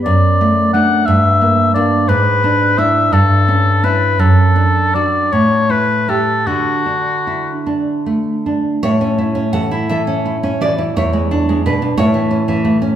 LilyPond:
<<
  \new Staff \with { instrumentName = "Oboe" } { \time 6/8 \key d \major \tempo 4. = 57 d''4 fis''8 e''4 d''8 | b'4 e''8 a'4 b'8 | a'4 d''8 cis''8 b'8 a'8 | fis'4. r4. |
\key a \major r2. | r2. | }
  \new Staff \with { instrumentName = "Nylon-string guitar" } { \time 6/8 \key d \major << { r2. | r2. | r2. | r2. |
\key a \major <e' cis''>4 <a' fis''>8 <a' e''>4 <fis' d''>8 | <e' cis''>4 <d' b'>8 <e' cis''>4. | } \\ { fis,8 a8 <a d'>8 g,8 bes8 <bes d'>8 | gis,8 d'8 <d' e'>8 g,8 cis'8 <cis' e'>8 | fis,8 d'8 <d' fis'>8 a,8 e'8 <e' g'>8 | d8 d'8 e'8 d'8 a8 d'8 |
a,16 cis'16 e'16 cis'16 e16 e'16 e16 cis'16 e'16 cis'16 e16 e'16 | e,16 gis16 d'16 gis16 b,16 d'16 a,16 e16 cis'16 e16 a16 cis'16 | } >> }
>>